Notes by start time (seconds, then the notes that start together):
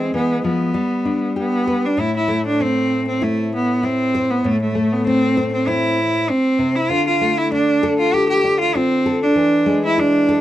Already playing: E3 G#3 C4
0.14 E3 B3
0.44 F3 B3
0.74 G3
1.05 D4
1.36 B3 G4
1.67 B4
1.85 D4
1.97 A2 E4
2.16 E4
2.28 A3
2.46 D4
2.60 C4
3.08 C4
3.22 A3 E4
3.55 B3
3.83 C4 E4
4.15 C5
4.30 B3
4.44 A2 A3
4.62 A3
4.75 A3
4.92 B3
5.07 C4
5.37 C5
5.53 C4
5.67 C4 E4
6.30 C4
6.59 C3
6.75 E4
6.90 D3 F4
7.07 F4
7.21 A3
7.38 E4
7.52 D4
7.83 A4
7.99 F4
8.14 F4 G4
8.29 G4
8.44 D4
8.60 F4
8.75 C4 F4
9.06 A4
9.22 D4
9.35 E3
9.66 G#3
9.85 E4
9.98 D4 E4
10.29 A4